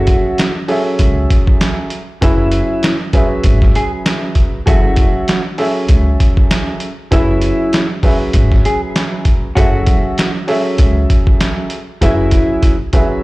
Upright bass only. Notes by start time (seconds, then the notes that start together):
Already playing: F#1
1.00 C#2
2.22 F#1
3.45 G#1
4.67 F#1
5.89 C#2
7.12 F#1
8.34 G#1
9.57 F#1
10.79 C#2
12.02 F#1